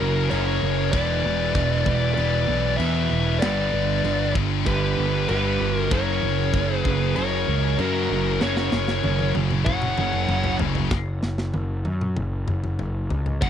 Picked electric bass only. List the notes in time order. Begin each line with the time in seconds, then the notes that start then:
0.01 F#1
0.32 F#1
0.63 F#1
0.93 E1
1.24 E1
1.55 E1
1.86 E1
2.17 E1
2.48 B1
2.80 E2
3.11 E1
3.42 G1
3.73 G1
4.04 G1
4.36 G1
4.67 G1
4.99 G1
5.30 G1
5.60 G1
5.91 F#1
6.23 F#1
6.54 F#1
6.85 F#1
7.17 F#1
7.48 C#2
7.79 F#2
8.10 F#1
8.41 F#1
8.72 F#1
9.04 F#1
9.35 F#1
9.67 F#1
9.98 F#1
10.28 F#1
10.60 F#1
10.92 F#1
11.23 F#1
11.54 F#1
11.86 F#2
12.17 F#1
12.48 F#1
12.80 F#1
13.11 C#2
13.42 F#1